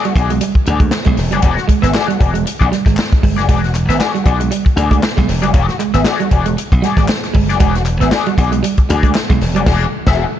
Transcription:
Already playing: F#4
0.05 G3, muted clean electric guitar stroke, closed hi-hat
0.16 B1 F#4 G#4, muted clean electric guitar stroke, kick, closed hi-hat
0.20 D5
0.30 G#3, muted clean electric guitar stroke, closed hi-hat
0.41 G3, muted clean electric guitar stroke, closed hi-hat
0.55 kick
0.66 D2 F#4 G#4, muted clean electric guitar stroke, closed hi-hat
0.70 D5
0.80 G#3, muted clean electric guitar stroke, kick, closed hi-hat
0.91 muted clean electric guitar stroke, snare, clap
1.04 B1 G#3, muted clean electric guitar stroke, kick, snare, closed hi-hat
1.17 E1, muted clean electric guitar stroke, snare, open hi-hat
1.31 F#1 G3 F#4 G#4 D5, closed hi-hat
1.42 E1 F#4 G#4 D5, kick, closed hi-hat
1.57 muted clean electric guitar stroke, snare
1.68 G#3, muted clean electric guitar stroke, kick, closed hi-hat
1.82 G#1 B3 F#4 G#4 E5, snare, closed hi-hat
1.94 F#4 G#4 D5, snare, clap
2.08 G3, muted clean electric guitar stroke, closed hi-hat
2.19 E1 F#4 G#4 D5, muted clean electric guitar stroke, kick, closed hi-hat
2.34 G#3, muted clean electric guitar stroke, closed hi-hat
2.45 muted clean electric guitar stroke, closed hi-hat
2.60 B1 F#4 G#4 D5, kick, closed hi-hat
2.70 G3, muted clean electric guitar stroke, snare, closed hi-hat
2.85 G#1 G#3, muted clean electric guitar stroke, kick, snare, closed hi-hat
2.96 muted clean electric guitar stroke, snare, clap
3.10 muted clean electric guitar stroke, kick, snare, closed hi-hat
3.23 G1 G#3, kick, open hi-hat
3.37 F#1 F#4 G#4 D5, snare, closed hi-hat
3.48 E1 G#3 F#4 G#4 D5, kick, closed hi-hat
3.63 muted clean electric guitar stroke, snare, closed hi-hat
3.75 muted clean electric guitar stroke, clap, closed hi-hat
3.88 G#1 B3 F#4 G#4 E5, snare, closed hi-hat
3.99 F#4 G#4 D5, snare, clap
4.13 G3, muted clean electric guitar stroke, closed hi-hat
4.24 B1 F#4 G#4 D5, muted clean electric guitar stroke, kick, closed hi-hat
4.40 G#3, muted clean electric guitar stroke, closed hi-hat
4.51 G3, muted clean electric guitar stroke, closed hi-hat
4.65 muted clean electric guitar stroke, kick, closed hi-hat
4.76 D2 F#4 G#4 D5, muted clean electric guitar stroke, closed hi-hat
4.91 G#3 F#4 G#4 D5, kick, closed hi-hat
5.03 muted clean electric guitar stroke, snare, clap
5.17 B1 G#3, muted clean electric guitar stroke, kick, snare, closed hi-hat
5.28 E1, muted clean electric guitar stroke, snare, open hi-hat
5.42 F#1 G3 F#4 G#4 D5, closed hi-hat
5.53 E1 F#4 G#4 D5, kick, closed hi-hat
5.68 muted clean electric guitar stroke, snare, closed hi-hat
5.79 G#3, muted clean electric guitar stroke, clap, closed hi-hat
5.94 G#1 B3 F#4 G#4 E5, snare, closed hi-hat
6.04 F#4 G#4 D5, snare, clap
6.20 G3, muted clean electric guitar stroke, closed hi-hat
6.31 E1 F#4 G#4 D5, muted clean electric guitar stroke, kick, closed hi-hat
6.46 G#3, muted clean electric guitar stroke, closed hi-hat
6.58 muted clean electric guitar stroke, closed hi-hat
6.72 B1, muted clean electric guitar stroke, kick, closed hi-hat
6.82 G3 F#4 G#4 D5, snare, closed hi-hat
6.97 G#1 G#3 F#4 G#4 D5, kick, snare, closed hi-hat
7.08 muted clean electric guitar stroke, snare, clap
7.23 muted clean electric guitar stroke, snare, closed hi-hat
7.34 G1 G#3, kick, open hi-hat
7.49 F#1 F#4 G#4 D5, snare, closed hi-hat
7.60 E1 G#3 F#4 G#4 D5, kick, closed hi-hat
7.75 muted clean electric guitar stroke, snare, closed hi-hat
7.86 muted clean electric guitar stroke, clap, closed hi-hat
8.00 G#1 B3 F#4 G#4 E5, snare, closed hi-hat
8.11 F#4 G#4 D5, snare, clap
8.26 G3, muted clean electric guitar stroke, closed hi-hat
8.38 B1 F#4 G#4 D5, muted clean electric guitar stroke, kick, closed hi-hat
8.52 G#3, muted clean electric guitar stroke, closed hi-hat
8.63 G3, muted clean electric guitar stroke, closed hi-hat
8.77 muted clean electric guitar stroke, kick, closed hi-hat
8.89 D2 F#4 G#4 D5, muted clean electric guitar stroke, closed hi-hat
9.03 G#3 F#4 G#4 D5, kick, closed hi-hat
9.14 muted clean electric guitar stroke, snare, clap
9.29 B1 G#3, muted clean electric guitar stroke, kick, snare, closed hi-hat
9.41 E1, muted clean electric guitar stroke, snare, open hi-hat
9.55 F#1 G3 F#4 G#4 D5, closed hi-hat
9.66 E1 F#4 G#4 D5, kick, snare, crash
10.07 E1 F#4 G#4 E5, kick, snare

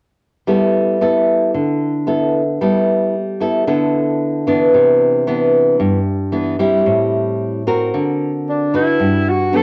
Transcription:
0.47 G3 B3 E4 A4
1.01 B3 E4 A4
1.54 D3
2.07 B3 E4 A4
2.61 G3 B3 E4 A4
3.40 B3 E4 A4
3.67 D3 B3 E4 A4
4.47 E3 B3 D4
4.74 C3
5.27 E3 B3 D4
5.80 G2
6.32 E3 B3 D4
6.59 G3 C4 E4
6.86 A2
7.67 C4 F#4 A#4
7.94 D3
8.49 D4
8.74 D4 E4 F#4 B4
9.00 G2
9.30 F#4
9.53 F#3 B3 D4 A4

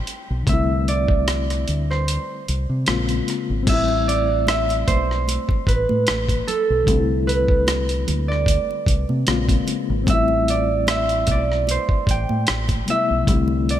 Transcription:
Already playing: G3 A3 C4 E4 G5
0.07 closed hi-hat
0.30 B1
0.43 D3 G3, kick
0.47 C2 A3 C4 E5, closed hi-hat
0.53 E4
0.88 D5, closed hi-hat
1.08 kick
1.28 cross-stick, closed hi-hat
1.50 cross-stick, closed hi-hat
1.68 D2, closed hi-hat
1.91 C5, cross-stick
2.08 closed hi-hat
2.48 C2, closed hi-hat
2.69 C3
2.86 A#1 C#3 G#3 A#3 C4, cross-stick, closed hi-hat
2.90 F4
3.09 closed hi-hat
3.28 cross-stick, closed hi-hat
3.50 G#1
3.63 G3 C4, crash
3.67 A1 A3 E5, kick, closed hi-hat, muted conga
3.72 E4
3.88 muted conga
4.08 D5, closed hi-hat
4.47 E5, cross-stick, closed hi-hat, muted conga, high conga
4.69 closed hi-hat, muted conga
4.87 B1 C5, kick, closed hi-hat, high conga, low conga
5.11 cross-stick
5.28 closed hi-hat, high conga
5.49 kick, muted conga
5.67 A1 B4, kick, closed hi-hat
5.89 A2, high conga
6.07 A1, cross-stick, closed hi-hat, muted conga, high conga
6.29 kick, closed hi-hat, high conga
6.47 A4, closed hi-hat, low conga
6.70 B1
6.83 D3 G3
6.87 C2 A3 C4, kick, closed hi-hat
6.93 D4
6.99 E4
7.27 B4, closed hi-hat
7.48 kick
7.67 cross-stick, closed hi-hat, muted conga, high conga
7.89 closed hi-hat
8.08 D2, closed hi-hat, high conga, low conga
8.28 D5, cross-stick
8.46 kick, closed hi-hat, muted conga, high conga
8.71 muted conga
8.86 C2, kick, closed hi-hat
9.09 C3, high conga
9.26 A#1 C#3 G#3 A#3 C4, cross-stick, closed hi-hat, muted conga, high conga
9.31 F4
9.49 kick, closed hi-hat, muted conga, high conga
9.67 closed hi-hat, low conga
9.90 G#1
10.04 A1 G3 C4, kick, muted conga
10.08 A3 E5, closed hi-hat
10.13 E4
10.28 muted conga
10.48 D5, closed hi-hat
10.87 E5, cross-stick, closed hi-hat, muted conga, high conga
11.09 closed hi-hat
11.27 B1, kick, closed hi-hat, high conga, low conga
11.31 D5
11.52 cross-stick
11.67 C5, closed hi-hat, muted conga, high conga
11.89 kick
12.07 A1 G5, kick, closed hi-hat
12.29 A2, high conga
12.47 A1, cross-stick, closed hi-hat, high conga
12.68 kick, closed hi-hat, muted conga, high conga
12.85 C3 G3 A3 B3, closed hi-hat, low conga
12.90 E4 E5
13.11 B1
13.23 D3 G3, kick
13.28 C2 A3 C4, closed hi-hat
13.34 E4
13.48 muted conga
13.69 D5, closed hi-hat

